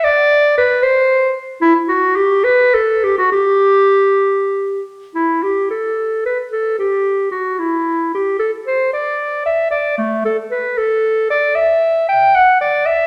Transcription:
\new Staff \with { instrumentName = "Clarinet" } { \time 6/8 \key g \major \tempo 4. = 75 d''4 b'8 c''4 r8 | e'8 fis'8 g'8 b'8 a'8 g'16 fis'16 | g'2~ g'8 r8 | \key a \dorian e'8 g'8 a'4 b'8 a'8 |
g'4 fis'8 e'4 g'8 | a'8 c''8 d''4 e''8 d''8 | a8 a'8 b'8 a'4 d''8 | \key e \minor e''4 g''8 fis''8 d''8 e''8 | }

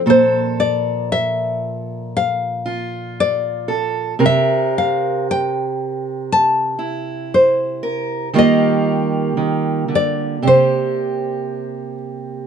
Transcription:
<<
  \new Staff \with { instrumentName = "Nylon-string guitar" } { \time 4/4 \key c \mixolydian \tempo 4 = 58 c''8 d''8 e''4 f''4 d''4 | e''8 f''8 g''4 a''4 c''4 | ees''4. d''8 c''4. r8 | }
  \new Staff \with { instrumentName = "Steel-string acoustic guitar" } { \time 4/4 \key c \mixolydian << { <f a'>2~ <f a'>8 f'4 a'8 | bes'2~ bes'8 e'4 bes'8 | <g bes f' g'>2 g'2 | } \\ { bes,1 | c1 | ees4 ees8 d8 c2 | } >> }
>>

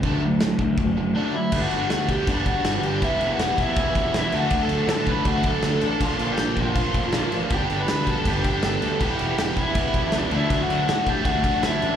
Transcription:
<<
  \new Staff \with { instrumentName = "Lead electric guitar" } { \time 4/4 \key d \dorian \tempo 4 = 160 r2. <d' d''>8 <e' e''>8~ | \key g \major <e' e''>16 <fis' fis''>8. <fis' fis''>8 <g' g''>8 <d' d''>8 <fis' fis''>4 <g' g''>8 | <e' e''>8. <fis' fis''>8. <e' e''>4. <e' e''>8 <fis' fis''>8~ | <fis' fis''>16 <a' a''>8. <a' a''>8 <b' b''>8 <fis' fis''>8 <a' a''>4 <a' a''>8 |
<f' f''>8. <g' g''>8. <f' f''>2 r8 | <g' g''>8. <b' b''>8. <a' a''>8 <g' g''>8 <g' g''>8 <a' a''>4 | <g' g''>4 <g' g''>8 <e' e''>4. <d' d''>8 <e' e''>8~ | <e' e''>16 <fis' fis''>8. <fis' fis''>8 <g' g''>8 <fis' fis''>4 <e' e''>4 | }
  \new Staff \with { instrumentName = "Distorted electric guitar" } { \clef bass \time 4/4 \key d \dorian <d fis a>8 <d fis>8 <d fis>8 <d fis>8 <d fis>8 <d fis>8 <d fis a>8 <d fis>8 | \key g \major <g, d g b d'>2 <g, d g b d'>2 | <e g b e'>2 <e g b e'>4. <d fis a d'>8~ | <d fis a d'>4. <d fis a d'>2 r8 |
<bes, d f bes d'>2 <bes, d f bes d'>2 | <g, d g b d'>2 <g, d g b d'>2 | <e g b e'>2 <e g b e'>4. <d fis a d'>8~ | <d fis a d'>4. <d fis a d'>2 r8 | }
  \new Staff \with { instrumentName = "Overdriven electric guitar" } { \clef bass \time 4/4 \key d \dorian <d a d'>8 <d a>8 <d a>8 <d a>8 <d a>8 <d a>8 <d a d'>8 <d a>8 | \key g \major <g, d g>4. <g, d g>4. <g, d g>4 | <e, b, e>4. <e, b, e>4. <e, b, e>8 <d a d'>8~ | <d a d'>4 <d a d'>4. <d a d'>4 r8 |
<bes, f bes>4. <bes, f bes>4. <bes, f bes>4 | <g, d g>4. <g, d g>4. <g, d g>4 | <e, b, e>4. <e, b, e>4. <e, b, e>8 <d a d'>8~ | <d a d'>4 <d a d'>4. <d a d'>4 r8 | }
  \new Staff \with { instrumentName = "Picked electric bass" } { \clef bass \time 4/4 \key d \dorian d,4 a,8 d,8 fis,,4 r4 | \key g \major g,,8 g,,8 d,4 g,,4 g,,8 g,,8 | e,,8 e,,8 e,,8 e,,8 e,,8 e,,8 e,,8 d,8 | d,8 d,8 a,4 d,4 d,8 a,,8 |
bes,,8 bes,,8 bes,,8 bes,,8 bes,,8 bes,,8 bes,,8 a,,8 | g,,8 g,,8 d,4 g,,4 g,,8 d,8 | e,,8 e,,8 e,,8 e,,8 e,,8 e,,8 cis,8 d,8 | d,8 d,8 a,4 d,4 d,8 a,,8 | }
  \new DrumStaff \with { instrumentName = "Drums" } \drummode { \time 4/4 <cymc bd>4 <cymc sn>8 bd8 <cymc bd>4 r4 | <cymc bd>8 cymc8 <cymc sn>8 <cymc bd>8 <cymc bd>8 <cymc bd>8 <cymc sn>8 cymc8 | <cymc bd>8 cymc8 <cymc sn>8 <cymc bd>8 <cymc bd>8 <cymc bd>8 <cymc sn>8 cymc8 | <cymc bd>8 cymc8 <cymc sn>8 <cymc bd>8 <cymc bd>8 <cymc bd>8 <cymc sn>8 cymc8 |
<cymc bd>8 cymc8 <cymc sn>8 <cymc bd>8 <cymc bd>8 <cymc bd>8 <cymc sn>8 cymc8 | <cymc bd>8 cymc8 <cymc sn>8 <cymc bd>8 <cymc bd>8 <cymc bd>8 <cymc sn>8 cymc8 | <cymc bd>8 cymc8 <cymc sn>8 <cymc bd>8 <cymc bd>8 <cymc bd>8 <cymc sn>8 cymc8 | <cymc bd>8 cymc8 <cymc sn>8 <cymc bd>8 <cymc bd>8 <cymc bd>8 <cymc sn>8 cymc8 | }
>>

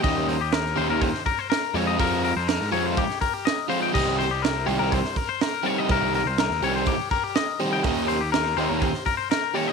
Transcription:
<<
  \new Staff \with { instrumentName = "Clean electric guitar" } { \time 4/4 \key c \phrygian \tempo 4 = 123 ees''8 c''16 g'16 bes'8 c''16 bes'16 c''8 bes'16 c''16 bes'8 des''16 ees''16 | bes'8 bes'16 c''16 bes'8 des''16 c''16 g'8 bes'16 g'16 ees''8 c''16 g''16 | ees''8 c''16 g'16 bes'8 c''16 bes'16 c''8 bes'16 c''16 bes'8 des''16 ees''16 | bes'8 bes'16 c''16 bes'8 des''16 c''16 g'8 bes'16 g'16 ees''8 c''16 g''16 |
ees''8 c''16 g'16 bes'8 c''16 bes'16 c''8 bes'16 c''16 bes'8 des''16 ees''16 | }
  \new Staff \with { instrumentName = "Overdriven electric guitar" } { \time 4/4 \key c \phrygian <ees bes des' g'>8 r4 <ees bes des' g'>8 r4. <f aes c' f'>8 | <f aes c' f'>8 r4 <f aes c' f'>8 r4. <f aes c' f'>8 | <ees g c' g'>8 r4 <ees g c' g'>8 r4. <ees g c' g'>8 | <ees g c' g'>8 r4 <ees g c' g'>8 r4. <ees g c' g'>8 |
<ees bes des' g'>8 r4 <ees bes des' g'>8 r4. <ees bes des' g'>8 | }
  \new Staff \with { instrumentName = "Picked electric bass" } { \clef bass \time 4/4 \key c \phrygian ees,4. ees,16 ees,8 r4 r16 f,8~ | f,8. f,8 aes,16 f,8 r2 | c,4. c,16 c,8 r4. r16 | c,8. c,8 ees,16 c,8 r2 |
ees,4. ees,16 ees,8 r4. r16 | }
  \new DrumStaff \with { instrumentName = "Drums" } \drummode { \time 4/4 <hho bd>8 hho8 <hho sn>16 sn16 hho8 <hho bd>16 sn16 <hho bd>8 <hho sn>8 hho8 | <hho bd>8 hho8 <hho sn>16 sn16 hho8 <hho bd>16 sn16 <hho bd>8 <hho sn>8 hho8 | <cymc bd>8 hho8 <hho sn>8 hho8 <hho bd>16 sn16 <hho bd>8 <hho sn>8 hho8 | <hho bd>8 hho8 <hho sn>16 sn16 hho8 <hho bd>8 <hho bd>8 <hho sn>8 hho8 |
<hho bd>8 hho8 <hho sn>16 sn16 hho8 <hho bd>16 sn16 <hho bd>8 <hho sn>8 hho8 | }
>>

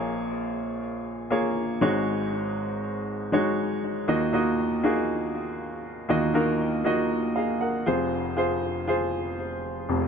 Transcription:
<<
  \new Staff \with { instrumentName = "Grand piano" } { \time 4/4 \key ees \dorian \tempo 4 = 119 << { r1 | r1 | r1 | r2 r8 <aes' f''>8 <bes' ges''>4 |
r1 | } \\ { <bes f' aes' des''>4 r4. <bes f' aes' des''>4 <aes ees' ges' des''>8~ | <aes ees' ges' des''>4 r4. <aes ees' ges' des''>4 r8 | <bes ees' f' ges' ees''>8 <bes ees' f' ges' ees''>8. r16 <bes ees' f' ges' aes'>4. r4 | <bes ees' f' ges' ees''>8 <bes ees' f' ges' bes'>8. r16 <bes ees' f' ges' ees''>4. r8 <f' aes' c''>8~ |
<f' aes' c''>8 <f' aes' c''>8. r16 <f' aes' c''>4. r4 | } >> }
  \new Staff \with { instrumentName = "Grand piano" } { \clef bass \time 4/4 \key ees \dorian <bes,, bes,>2.~ <bes,, bes,>8 <aes,, aes,>8~ | <aes,, aes,>2.~ <aes,, aes,>8 r8 | <ees, ees>1 | <ees, ees>2.~ <ees, ees>8 <f,, f,>8~ |
<f,, f,>2.~ <f,, f,>8 <f,, f,>8 | }
>>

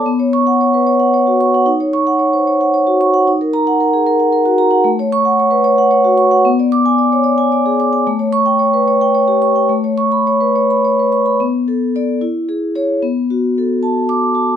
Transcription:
\new Staff \with { instrumentName = "Vibraphone" } { \time 6/8 \key a \major \tempo 4. = 75 << { r8 cis'''8 r2 | r8 cis'''8 r2 | r8 ais''8 r2 | r8 cis'''8 r2 |
r8 d'''8 r2 | r8 cis'''8 r2 | r8 cis'''8 r2 | r4 d''8 r4 cis''8 |
r2 d'''4 | } \\ { b16 cis''8 fis''16 cis''16 b'16 cis''16 fis''16 cis''16 fis'16 cis'''16 fis''16 | dis'16 cis''8 fis''16 cis''16 c''16 cis''16 fis''16 cis''16 fis'16 cis'''16 fis''16 | dis'16 ais'8 fis''16 ais'16 gis'16 ais'16 fis''16 ais'16 fis'16 ais''16 fis''16 | a16 cis''8 fis''16 cis''16 b'16 cis''16 fis''16 cis''16 fis'16 cis'''16 fis''16 |
b16 d''8 gis''16 d''16 cis''16 d''16 gis''16 d''16 gis'16 d'''16 gis''16 | a16 cis''8 g''16 cis''16 b'16 cis''16 g''16 cis''16 g'16 cis'''16 g''16 | a16 cis''8 b''16 cis''16 b'16 cis''16 b''16 cis''16 b'16 cis'''16 b''16 | b8 a'8 a'8 e'8 gis'8 gis'8 |
b8 fis'8 a'8 a''8. r16 a''8 | } >> }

